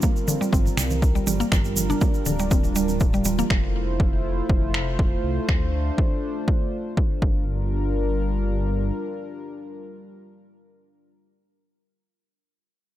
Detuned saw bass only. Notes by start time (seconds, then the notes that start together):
0.53 G1
0.77 C2
1.27 G1
1.52 G1
2.26 D1
3.50 F1
4.50 F1
5.24 C2
5.49 D2
7.22 G1